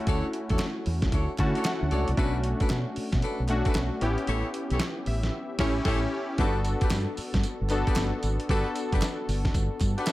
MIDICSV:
0, 0, Header, 1, 6, 480
1, 0, Start_track
1, 0, Tempo, 526316
1, 63, Time_signature, 4, 2, 24, 8
1, 9229, End_track
2, 0, Start_track
2, 0, Title_t, "Horn section"
2, 0, Program_c, 0, 61
2, 65, Note_on_c, 0, 62, 92
2, 66, Note_on_c, 0, 66, 78
2, 67, Note_on_c, 0, 69, 85
2, 68, Note_on_c, 0, 73, 105
2, 238, Note_off_c, 0, 62, 0
2, 239, Note_off_c, 0, 66, 0
2, 240, Note_off_c, 0, 69, 0
2, 240, Note_off_c, 0, 73, 0
2, 457, Note_on_c, 0, 62, 78
2, 458, Note_on_c, 0, 66, 67
2, 460, Note_on_c, 0, 69, 68
2, 462, Note_on_c, 0, 73, 81
2, 581, Note_off_c, 0, 62, 0
2, 582, Note_off_c, 0, 66, 0
2, 583, Note_off_c, 0, 69, 0
2, 584, Note_off_c, 0, 73, 0
2, 1023, Note_on_c, 0, 62, 70
2, 1027, Note_on_c, 0, 66, 64
2, 1029, Note_on_c, 0, 69, 68
2, 1029, Note_on_c, 0, 73, 83
2, 1198, Note_off_c, 0, 62, 0
2, 1200, Note_off_c, 0, 66, 0
2, 1201, Note_off_c, 0, 69, 0
2, 1201, Note_off_c, 0, 73, 0
2, 1419, Note_on_c, 0, 62, 74
2, 1421, Note_on_c, 0, 66, 66
2, 1422, Note_on_c, 0, 69, 72
2, 1425, Note_on_c, 0, 73, 87
2, 1542, Note_off_c, 0, 62, 0
2, 1544, Note_off_c, 0, 66, 0
2, 1544, Note_off_c, 0, 69, 0
2, 1545, Note_off_c, 0, 73, 0
2, 1741, Note_on_c, 0, 62, 79
2, 1744, Note_on_c, 0, 66, 70
2, 1747, Note_on_c, 0, 69, 68
2, 1750, Note_on_c, 0, 73, 87
2, 1917, Note_off_c, 0, 62, 0
2, 1918, Note_off_c, 0, 66, 0
2, 1920, Note_off_c, 0, 69, 0
2, 1921, Note_off_c, 0, 73, 0
2, 1982, Note_on_c, 0, 62, 100
2, 1986, Note_on_c, 0, 66, 85
2, 1987, Note_on_c, 0, 69, 85
2, 1988, Note_on_c, 0, 71, 110
2, 2157, Note_off_c, 0, 62, 0
2, 2159, Note_off_c, 0, 66, 0
2, 2160, Note_off_c, 0, 69, 0
2, 2160, Note_off_c, 0, 71, 0
2, 2373, Note_on_c, 0, 62, 77
2, 2375, Note_on_c, 0, 66, 72
2, 2376, Note_on_c, 0, 69, 68
2, 2378, Note_on_c, 0, 71, 83
2, 2499, Note_off_c, 0, 62, 0
2, 2501, Note_off_c, 0, 66, 0
2, 2501, Note_off_c, 0, 69, 0
2, 2502, Note_off_c, 0, 71, 0
2, 2941, Note_on_c, 0, 66, 69
2, 2942, Note_on_c, 0, 62, 71
2, 2945, Note_on_c, 0, 69, 67
2, 2945, Note_on_c, 0, 71, 82
2, 3117, Note_off_c, 0, 62, 0
2, 3117, Note_off_c, 0, 66, 0
2, 3118, Note_off_c, 0, 69, 0
2, 3118, Note_off_c, 0, 71, 0
2, 3336, Note_on_c, 0, 62, 80
2, 3337, Note_on_c, 0, 66, 72
2, 3338, Note_on_c, 0, 69, 73
2, 3341, Note_on_c, 0, 71, 94
2, 3461, Note_off_c, 0, 62, 0
2, 3461, Note_off_c, 0, 66, 0
2, 3462, Note_off_c, 0, 69, 0
2, 3463, Note_off_c, 0, 71, 0
2, 3900, Note_on_c, 0, 64, 97
2, 3903, Note_on_c, 0, 67, 86
2, 3904, Note_on_c, 0, 69, 88
2, 3906, Note_on_c, 0, 73, 100
2, 4076, Note_off_c, 0, 64, 0
2, 4078, Note_off_c, 0, 67, 0
2, 4078, Note_off_c, 0, 69, 0
2, 4079, Note_off_c, 0, 73, 0
2, 4295, Note_on_c, 0, 64, 74
2, 4296, Note_on_c, 0, 67, 68
2, 4299, Note_on_c, 0, 69, 71
2, 4299, Note_on_c, 0, 73, 87
2, 4420, Note_off_c, 0, 64, 0
2, 4421, Note_off_c, 0, 67, 0
2, 4422, Note_off_c, 0, 73, 0
2, 4423, Note_off_c, 0, 69, 0
2, 5098, Note_on_c, 0, 64, 98
2, 5099, Note_on_c, 0, 67, 97
2, 5101, Note_on_c, 0, 69, 96
2, 5103, Note_on_c, 0, 73, 109
2, 5230, Note_off_c, 0, 64, 0
2, 5231, Note_off_c, 0, 67, 0
2, 5233, Note_off_c, 0, 69, 0
2, 5234, Note_off_c, 0, 73, 0
2, 5339, Note_on_c, 0, 64, 100
2, 5340, Note_on_c, 0, 67, 104
2, 5341, Note_on_c, 0, 69, 110
2, 5343, Note_on_c, 0, 73, 102
2, 5471, Note_off_c, 0, 64, 0
2, 5472, Note_off_c, 0, 67, 0
2, 5473, Note_off_c, 0, 69, 0
2, 5474, Note_off_c, 0, 73, 0
2, 5823, Note_on_c, 0, 62, 98
2, 5823, Note_on_c, 0, 66, 90
2, 5826, Note_on_c, 0, 67, 91
2, 5826, Note_on_c, 0, 71, 104
2, 5998, Note_off_c, 0, 62, 0
2, 5998, Note_off_c, 0, 66, 0
2, 5999, Note_off_c, 0, 67, 0
2, 5999, Note_off_c, 0, 71, 0
2, 6214, Note_on_c, 0, 62, 75
2, 6214, Note_on_c, 0, 66, 74
2, 6217, Note_on_c, 0, 67, 73
2, 6219, Note_on_c, 0, 71, 86
2, 6340, Note_off_c, 0, 62, 0
2, 6340, Note_off_c, 0, 66, 0
2, 6341, Note_off_c, 0, 67, 0
2, 6342, Note_off_c, 0, 71, 0
2, 7176, Note_on_c, 0, 62, 78
2, 7177, Note_on_c, 0, 66, 68
2, 7178, Note_on_c, 0, 67, 75
2, 7180, Note_on_c, 0, 71, 90
2, 7301, Note_off_c, 0, 62, 0
2, 7301, Note_off_c, 0, 66, 0
2, 7302, Note_off_c, 0, 67, 0
2, 7303, Note_off_c, 0, 71, 0
2, 7745, Note_on_c, 0, 62, 95
2, 7747, Note_on_c, 0, 66, 89
2, 7748, Note_on_c, 0, 67, 85
2, 7748, Note_on_c, 0, 71, 107
2, 7919, Note_off_c, 0, 62, 0
2, 7920, Note_off_c, 0, 66, 0
2, 7920, Note_off_c, 0, 67, 0
2, 7920, Note_off_c, 0, 71, 0
2, 8138, Note_on_c, 0, 62, 81
2, 8140, Note_on_c, 0, 66, 70
2, 8144, Note_on_c, 0, 67, 66
2, 8144, Note_on_c, 0, 71, 81
2, 8262, Note_off_c, 0, 62, 0
2, 8263, Note_off_c, 0, 66, 0
2, 8265, Note_off_c, 0, 67, 0
2, 8265, Note_off_c, 0, 71, 0
2, 9097, Note_on_c, 0, 62, 82
2, 9098, Note_on_c, 0, 66, 78
2, 9100, Note_on_c, 0, 67, 76
2, 9103, Note_on_c, 0, 71, 86
2, 9222, Note_off_c, 0, 62, 0
2, 9222, Note_off_c, 0, 66, 0
2, 9223, Note_off_c, 0, 67, 0
2, 9225, Note_off_c, 0, 71, 0
2, 9229, End_track
3, 0, Start_track
3, 0, Title_t, "Synth keys"
3, 0, Program_c, 1, 88
3, 0, Note_on_c, 1, 57, 88
3, 0, Note_on_c, 1, 61, 79
3, 0, Note_on_c, 1, 64, 86
3, 0, Note_on_c, 1, 66, 89
3, 7, Control_c, 1, 64, 127
3, 672, Note_off_c, 1, 57, 0
3, 674, Note_off_c, 1, 61, 0
3, 675, Note_off_c, 1, 64, 0
3, 676, Note_off_c, 1, 66, 0
3, 1263, Note_on_c, 1, 57, 81
3, 1265, Note_on_c, 1, 61, 78
3, 1270, Note_on_c, 1, 81, 73
3, 1271, Note_on_c, 1, 64, 77
3, 1276, Note_on_c, 1, 66, 97
3, 1490, Note_off_c, 1, 81, 0
3, 1508, Note_on_c, 1, 78, 70
3, 1729, Note_off_c, 1, 78, 0
3, 1751, Note_on_c, 1, 74, 70
3, 1908, Note_off_c, 1, 57, 0
3, 1909, Note_off_c, 1, 61, 0
3, 1912, Note_off_c, 1, 64, 0
3, 1915, Note_off_c, 1, 66, 0
3, 1971, Note_off_c, 1, 74, 0
3, 1980, Note_on_c, 1, 57, 86
3, 1985, Note_on_c, 1, 61, 80
3, 1986, Note_on_c, 1, 62, 76
3, 1991, Note_on_c, 1, 66, 92
3, 1997, Control_c, 1, 64, 0
3, 2179, Control_c, 1, 64, 127
3, 2832, Note_off_c, 1, 57, 0
3, 2834, Note_off_c, 1, 61, 0
3, 2835, Note_off_c, 1, 62, 0
3, 2838, Note_off_c, 1, 66, 0
3, 3183, Note_on_c, 1, 57, 81
3, 3188, Note_on_c, 1, 61, 74
3, 3193, Note_on_c, 1, 62, 77
3, 3193, Note_on_c, 1, 66, 96
3, 3651, Note_off_c, 1, 61, 0
3, 3661, Note_on_c, 1, 59, 89
3, 3662, Note_on_c, 1, 61, 80
3, 3663, Note_off_c, 1, 57, 0
3, 3668, Note_off_c, 1, 62, 0
3, 3668, Note_off_c, 1, 66, 0
3, 3669, Note_on_c, 1, 64, 84
3, 3672, Note_on_c, 1, 67, 96
3, 3675, Control_c, 1, 64, 0
3, 3859, Control_c, 1, 64, 127
3, 4513, Note_off_c, 1, 59, 0
3, 4513, Note_off_c, 1, 61, 0
3, 4517, Note_off_c, 1, 64, 0
3, 4518, Note_off_c, 1, 67, 0
3, 4626, Note_on_c, 1, 76, 71
3, 4848, Note_off_c, 1, 76, 0
3, 5104, Note_on_c, 1, 61, 110
3, 5108, Note_on_c, 1, 64, 102
3, 5110, Note_on_c, 1, 67, 100
3, 5278, Note_off_c, 1, 61, 0
3, 5280, Note_off_c, 1, 64, 0
3, 5281, Note_off_c, 1, 67, 0
3, 5353, Note_on_c, 1, 61, 100
3, 5357, Note_on_c, 1, 64, 94
3, 5359, Note_on_c, 1, 67, 102
3, 5523, Note_off_c, 1, 61, 0
3, 5525, Note_off_c, 1, 64, 0
3, 5527, Note_off_c, 1, 67, 0
3, 5826, Note_on_c, 1, 59, 84
3, 5833, Note_on_c, 1, 62, 78
3, 5834, Control_c, 1, 64, 0
3, 5835, Note_on_c, 1, 66, 84
3, 5839, Note_on_c, 1, 69, 90
3, 6016, Control_c, 1, 64, 127
3, 6675, Note_off_c, 1, 59, 0
3, 6679, Note_off_c, 1, 62, 0
3, 6680, Note_off_c, 1, 66, 0
3, 6682, Note_off_c, 1, 69, 0
3, 7026, Note_on_c, 1, 59, 92
3, 7030, Note_on_c, 1, 62, 83
3, 7036, Note_on_c, 1, 66, 78
3, 7038, Note_on_c, 1, 69, 95
3, 7670, Note_off_c, 1, 59, 0
3, 7672, Note_off_c, 1, 62, 0
3, 7675, Note_off_c, 1, 66, 0
3, 7676, Note_off_c, 1, 69, 0
3, 7749, Note_on_c, 1, 59, 83
3, 7753, Note_on_c, 1, 62, 80
3, 7757, Note_on_c, 1, 66, 80
3, 7758, Note_on_c, 1, 69, 97
3, 8597, Note_off_c, 1, 59, 0
3, 8599, Note_off_c, 1, 62, 0
3, 8601, Note_off_c, 1, 66, 0
3, 8601, Note_off_c, 1, 69, 0
3, 9098, Note_on_c, 1, 78, 62
3, 9104, Note_on_c, 1, 74, 52
3, 9180, Note_off_c, 1, 78, 0
3, 9183, Note_off_c, 1, 74, 0
3, 9187, Note_on_c, 1, 76, 70
3, 9190, Note_on_c, 1, 73, 56
3, 9229, Note_off_c, 1, 73, 0
3, 9229, Note_off_c, 1, 76, 0
3, 9229, End_track
4, 0, Start_track
4, 0, Title_t, "Fingered electric bass"
4, 0, Program_c, 2, 33
4, 65, Note_on_c, 2, 38, 102
4, 188, Note_off_c, 2, 38, 0
4, 458, Note_on_c, 2, 40, 90
4, 528, Note_off_c, 2, 40, 0
4, 790, Note_on_c, 2, 40, 85
4, 982, Note_off_c, 2, 40, 0
4, 1024, Note_on_c, 2, 38, 91
4, 1148, Note_off_c, 2, 38, 0
4, 1266, Note_on_c, 2, 50, 99
4, 1389, Note_off_c, 2, 50, 0
4, 1661, Note_on_c, 2, 38, 87
4, 1730, Note_off_c, 2, 38, 0
4, 1748, Note_on_c, 2, 37, 80
4, 1870, Note_off_c, 2, 37, 0
4, 1901, Note_on_c, 2, 36, 91
4, 1970, Note_off_c, 2, 36, 0
4, 1985, Note_on_c, 2, 35, 112
4, 2303, Note_off_c, 2, 35, 0
4, 2465, Note_on_c, 2, 47, 100
4, 2589, Note_off_c, 2, 47, 0
4, 2854, Note_on_c, 2, 47, 99
4, 2926, Note_off_c, 2, 47, 0
4, 3096, Note_on_c, 2, 35, 88
4, 3291, Note_off_c, 2, 35, 0
4, 3423, Note_on_c, 2, 35, 105
4, 3547, Note_off_c, 2, 35, 0
4, 3660, Note_on_c, 2, 33, 91
4, 3786, Note_off_c, 2, 33, 0
4, 3903, Note_on_c, 2, 33, 110
4, 4027, Note_off_c, 2, 33, 0
4, 4294, Note_on_c, 2, 35, 94
4, 4365, Note_off_c, 2, 35, 0
4, 4621, Note_on_c, 2, 33, 85
4, 4817, Note_off_c, 2, 33, 0
4, 5100, Note_on_c, 2, 33, 107
4, 5276, Note_off_c, 2, 33, 0
4, 5341, Note_on_c, 2, 33, 103
4, 5516, Note_off_c, 2, 33, 0
4, 5822, Note_on_c, 2, 31, 102
4, 6142, Note_off_c, 2, 31, 0
4, 6304, Note_on_c, 2, 43, 100
4, 6428, Note_off_c, 2, 43, 0
4, 6695, Note_on_c, 2, 43, 96
4, 6766, Note_off_c, 2, 43, 0
4, 6940, Note_on_c, 2, 31, 89
4, 7133, Note_off_c, 2, 31, 0
4, 7270, Note_on_c, 2, 31, 93
4, 7391, Note_off_c, 2, 31, 0
4, 7506, Note_on_c, 2, 32, 79
4, 7629, Note_off_c, 2, 32, 0
4, 7746, Note_on_c, 2, 31, 116
4, 7869, Note_off_c, 2, 31, 0
4, 8139, Note_on_c, 2, 30, 93
4, 8209, Note_off_c, 2, 30, 0
4, 8465, Note_on_c, 2, 31, 91
4, 8659, Note_off_c, 2, 31, 0
4, 8703, Note_on_c, 2, 31, 101
4, 8828, Note_off_c, 2, 31, 0
4, 8945, Note_on_c, 2, 43, 103
4, 9068, Note_off_c, 2, 43, 0
4, 9229, End_track
5, 0, Start_track
5, 0, Title_t, "Muted fingered electric bass strokes"
5, 2707, Note_on_c, 9, 29, 46
5, 2798, Note_off_c, 9, 29, 0
5, 2945, Note_on_c, 9, 29, 48
5, 3036, Note_off_c, 9, 29, 0
5, 6546, Note_on_c, 9, 29, 46
5, 6637, Note_off_c, 9, 29, 0
5, 6789, Note_on_c, 9, 29, 50
5, 6880, Note_off_c, 9, 29, 0
5, 9229, End_track
6, 0, Start_track
6, 0, Title_t, "Drums"
6, 62, Note_on_c, 9, 42, 65
6, 64, Note_on_c, 9, 36, 100
6, 153, Note_off_c, 9, 42, 0
6, 155, Note_off_c, 9, 36, 0
6, 305, Note_on_c, 9, 42, 80
6, 396, Note_off_c, 9, 42, 0
6, 451, Note_on_c, 9, 42, 48
6, 457, Note_on_c, 9, 36, 89
6, 537, Note_on_c, 9, 39, 92
6, 539, Note_on_c, 9, 38, 124
6, 541, Note_off_c, 9, 42, 0
6, 541, Note_on_c, 9, 42, 71
6, 548, Note_off_c, 9, 36, 0
6, 629, Note_off_c, 9, 39, 0
6, 630, Note_off_c, 9, 38, 0
6, 632, Note_off_c, 9, 42, 0
6, 783, Note_on_c, 9, 46, 62
6, 874, Note_off_c, 9, 46, 0
6, 932, Note_on_c, 9, 38, 66
6, 933, Note_on_c, 9, 42, 45
6, 934, Note_on_c, 9, 36, 91
6, 1023, Note_off_c, 9, 36, 0
6, 1023, Note_off_c, 9, 38, 0
6, 1023, Note_off_c, 9, 42, 0
6, 1023, Note_on_c, 9, 36, 91
6, 1023, Note_on_c, 9, 42, 65
6, 1115, Note_off_c, 9, 36, 0
6, 1115, Note_off_c, 9, 42, 0
6, 1260, Note_on_c, 9, 39, 71
6, 1264, Note_on_c, 9, 42, 62
6, 1265, Note_on_c, 9, 36, 87
6, 1351, Note_off_c, 9, 39, 0
6, 1356, Note_off_c, 9, 36, 0
6, 1356, Note_off_c, 9, 42, 0
6, 1417, Note_on_c, 9, 42, 52
6, 1501, Note_off_c, 9, 42, 0
6, 1501, Note_on_c, 9, 42, 67
6, 1502, Note_on_c, 9, 38, 102
6, 1503, Note_on_c, 9, 39, 103
6, 1592, Note_off_c, 9, 42, 0
6, 1594, Note_off_c, 9, 38, 0
6, 1595, Note_off_c, 9, 39, 0
6, 1742, Note_on_c, 9, 42, 63
6, 1834, Note_off_c, 9, 42, 0
6, 1894, Note_on_c, 9, 42, 58
6, 1982, Note_off_c, 9, 42, 0
6, 1982, Note_on_c, 9, 42, 65
6, 1983, Note_on_c, 9, 36, 109
6, 2074, Note_off_c, 9, 42, 0
6, 2075, Note_off_c, 9, 36, 0
6, 2222, Note_on_c, 9, 42, 75
6, 2313, Note_off_c, 9, 42, 0
6, 2373, Note_on_c, 9, 42, 49
6, 2377, Note_on_c, 9, 36, 91
6, 2461, Note_on_c, 9, 38, 113
6, 2461, Note_on_c, 9, 39, 92
6, 2463, Note_off_c, 9, 42, 0
6, 2463, Note_on_c, 9, 42, 68
6, 2468, Note_off_c, 9, 36, 0
6, 2552, Note_off_c, 9, 38, 0
6, 2552, Note_off_c, 9, 39, 0
6, 2555, Note_off_c, 9, 42, 0
6, 2701, Note_on_c, 9, 46, 61
6, 2792, Note_off_c, 9, 46, 0
6, 2850, Note_on_c, 9, 38, 63
6, 2851, Note_on_c, 9, 42, 46
6, 2853, Note_on_c, 9, 36, 94
6, 2940, Note_off_c, 9, 42, 0
6, 2940, Note_on_c, 9, 42, 72
6, 2941, Note_off_c, 9, 38, 0
6, 2944, Note_off_c, 9, 36, 0
6, 3031, Note_off_c, 9, 42, 0
6, 3178, Note_on_c, 9, 39, 67
6, 3179, Note_on_c, 9, 42, 67
6, 3269, Note_off_c, 9, 39, 0
6, 3271, Note_off_c, 9, 42, 0
6, 3331, Note_on_c, 9, 42, 49
6, 3336, Note_on_c, 9, 36, 94
6, 3418, Note_off_c, 9, 42, 0
6, 3418, Note_on_c, 9, 42, 62
6, 3419, Note_on_c, 9, 38, 112
6, 3420, Note_on_c, 9, 39, 104
6, 3427, Note_off_c, 9, 36, 0
6, 3509, Note_off_c, 9, 42, 0
6, 3511, Note_off_c, 9, 38, 0
6, 3511, Note_off_c, 9, 39, 0
6, 3660, Note_on_c, 9, 42, 65
6, 3751, Note_off_c, 9, 42, 0
6, 3811, Note_on_c, 9, 42, 54
6, 3898, Note_off_c, 9, 42, 0
6, 3898, Note_on_c, 9, 42, 64
6, 3989, Note_off_c, 9, 42, 0
6, 4139, Note_on_c, 9, 42, 77
6, 4231, Note_off_c, 9, 42, 0
6, 4291, Note_on_c, 9, 42, 53
6, 4374, Note_on_c, 9, 38, 116
6, 4376, Note_off_c, 9, 42, 0
6, 4376, Note_on_c, 9, 42, 76
6, 4379, Note_on_c, 9, 39, 101
6, 4465, Note_off_c, 9, 38, 0
6, 4468, Note_off_c, 9, 42, 0
6, 4470, Note_off_c, 9, 39, 0
6, 4617, Note_on_c, 9, 46, 61
6, 4709, Note_off_c, 9, 46, 0
6, 4773, Note_on_c, 9, 38, 62
6, 4775, Note_on_c, 9, 42, 45
6, 4865, Note_off_c, 9, 38, 0
6, 4866, Note_off_c, 9, 42, 0
6, 5095, Note_on_c, 9, 38, 100
6, 5095, Note_on_c, 9, 49, 82
6, 5100, Note_on_c, 9, 36, 107
6, 5187, Note_off_c, 9, 38, 0
6, 5187, Note_off_c, 9, 49, 0
6, 5191, Note_off_c, 9, 36, 0
6, 5335, Note_on_c, 9, 38, 106
6, 5335, Note_on_c, 9, 49, 78
6, 5340, Note_on_c, 9, 36, 103
6, 5427, Note_off_c, 9, 38, 0
6, 5427, Note_off_c, 9, 49, 0
6, 5431, Note_off_c, 9, 36, 0
6, 5820, Note_on_c, 9, 42, 63
6, 5822, Note_on_c, 9, 36, 106
6, 5911, Note_off_c, 9, 42, 0
6, 5913, Note_off_c, 9, 36, 0
6, 6059, Note_on_c, 9, 54, 65
6, 6062, Note_on_c, 9, 42, 74
6, 6151, Note_off_c, 9, 54, 0
6, 6153, Note_off_c, 9, 42, 0
6, 6211, Note_on_c, 9, 42, 52
6, 6216, Note_on_c, 9, 36, 95
6, 6296, Note_on_c, 9, 38, 127
6, 6297, Note_on_c, 9, 39, 96
6, 6298, Note_off_c, 9, 42, 0
6, 6298, Note_on_c, 9, 42, 73
6, 6300, Note_on_c, 9, 54, 98
6, 6307, Note_off_c, 9, 36, 0
6, 6387, Note_off_c, 9, 38, 0
6, 6389, Note_off_c, 9, 39, 0
6, 6390, Note_off_c, 9, 42, 0
6, 6391, Note_off_c, 9, 54, 0
6, 6541, Note_on_c, 9, 46, 60
6, 6542, Note_on_c, 9, 54, 62
6, 6633, Note_off_c, 9, 46, 0
6, 6633, Note_off_c, 9, 54, 0
6, 6693, Note_on_c, 9, 36, 90
6, 6693, Note_on_c, 9, 38, 70
6, 6694, Note_on_c, 9, 42, 45
6, 6780, Note_off_c, 9, 42, 0
6, 6780, Note_on_c, 9, 42, 67
6, 6781, Note_on_c, 9, 54, 70
6, 6784, Note_off_c, 9, 38, 0
6, 6785, Note_off_c, 9, 36, 0
6, 6872, Note_off_c, 9, 42, 0
6, 6872, Note_off_c, 9, 54, 0
6, 7017, Note_on_c, 9, 39, 68
6, 7019, Note_on_c, 9, 42, 66
6, 7023, Note_on_c, 9, 54, 65
6, 7108, Note_off_c, 9, 39, 0
6, 7110, Note_off_c, 9, 42, 0
6, 7114, Note_off_c, 9, 54, 0
6, 7177, Note_on_c, 9, 42, 54
6, 7179, Note_on_c, 9, 36, 98
6, 7257, Note_on_c, 9, 39, 98
6, 7258, Note_off_c, 9, 42, 0
6, 7258, Note_on_c, 9, 42, 69
6, 7258, Note_on_c, 9, 54, 92
6, 7260, Note_on_c, 9, 38, 109
6, 7271, Note_off_c, 9, 36, 0
6, 7348, Note_off_c, 9, 39, 0
6, 7349, Note_off_c, 9, 42, 0
6, 7349, Note_off_c, 9, 54, 0
6, 7351, Note_off_c, 9, 38, 0
6, 7503, Note_on_c, 9, 42, 73
6, 7503, Note_on_c, 9, 54, 66
6, 7594, Note_off_c, 9, 42, 0
6, 7594, Note_off_c, 9, 54, 0
6, 7658, Note_on_c, 9, 42, 58
6, 7745, Note_off_c, 9, 42, 0
6, 7745, Note_on_c, 9, 36, 101
6, 7745, Note_on_c, 9, 42, 69
6, 7836, Note_off_c, 9, 36, 0
6, 7836, Note_off_c, 9, 42, 0
6, 7983, Note_on_c, 9, 54, 63
6, 7986, Note_on_c, 9, 42, 71
6, 8074, Note_off_c, 9, 54, 0
6, 8077, Note_off_c, 9, 42, 0
6, 8139, Note_on_c, 9, 36, 93
6, 8141, Note_on_c, 9, 42, 56
6, 8221, Note_on_c, 9, 39, 97
6, 8227, Note_on_c, 9, 38, 121
6, 8229, Note_off_c, 9, 42, 0
6, 8229, Note_on_c, 9, 42, 75
6, 8231, Note_off_c, 9, 36, 0
6, 8231, Note_on_c, 9, 54, 97
6, 8312, Note_off_c, 9, 39, 0
6, 8318, Note_off_c, 9, 38, 0
6, 8320, Note_off_c, 9, 42, 0
6, 8322, Note_off_c, 9, 54, 0
6, 8470, Note_on_c, 9, 46, 66
6, 8471, Note_on_c, 9, 54, 61
6, 8562, Note_off_c, 9, 46, 0
6, 8562, Note_off_c, 9, 54, 0
6, 8617, Note_on_c, 9, 36, 101
6, 8621, Note_on_c, 9, 38, 68
6, 8622, Note_on_c, 9, 42, 49
6, 8704, Note_off_c, 9, 36, 0
6, 8704, Note_on_c, 9, 36, 92
6, 8707, Note_off_c, 9, 42, 0
6, 8707, Note_on_c, 9, 42, 71
6, 8707, Note_on_c, 9, 54, 73
6, 8712, Note_off_c, 9, 38, 0
6, 8795, Note_off_c, 9, 36, 0
6, 8798, Note_off_c, 9, 42, 0
6, 8799, Note_off_c, 9, 54, 0
6, 8941, Note_on_c, 9, 39, 69
6, 8943, Note_on_c, 9, 42, 60
6, 8944, Note_on_c, 9, 36, 81
6, 8947, Note_on_c, 9, 54, 72
6, 9032, Note_off_c, 9, 39, 0
6, 9034, Note_off_c, 9, 42, 0
6, 9035, Note_off_c, 9, 36, 0
6, 9038, Note_off_c, 9, 54, 0
6, 9101, Note_on_c, 9, 42, 50
6, 9180, Note_on_c, 9, 54, 98
6, 9181, Note_off_c, 9, 42, 0
6, 9181, Note_on_c, 9, 39, 105
6, 9181, Note_on_c, 9, 42, 63
6, 9182, Note_on_c, 9, 38, 115
6, 9229, Note_off_c, 9, 38, 0
6, 9229, Note_off_c, 9, 39, 0
6, 9229, Note_off_c, 9, 42, 0
6, 9229, Note_off_c, 9, 54, 0
6, 9229, End_track
0, 0, End_of_file